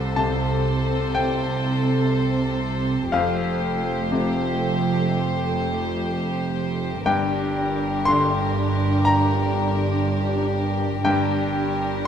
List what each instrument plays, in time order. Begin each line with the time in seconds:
Already playing: double bass section C2, grand piano C2 E5, cello section C3, viola section C4, violin section A4 C5
0.16 grand piano C3 A5
1.15 grand piano G5
3.11 double bass section F1, cello section F2, grand piano F2 F5, viola section A3, violin section G4 C5
4.12 grand piano C3
7.06 double bass section G1, cello section G2, grand piano G2 G5, viola section D4, violin section G4 A#4
8.05 grand piano D3 C6
9.05 grand piano A#5
11.04 double bass section G1, grand piano G2 G5, cello section G2, viola section D4, violin section G4 A#4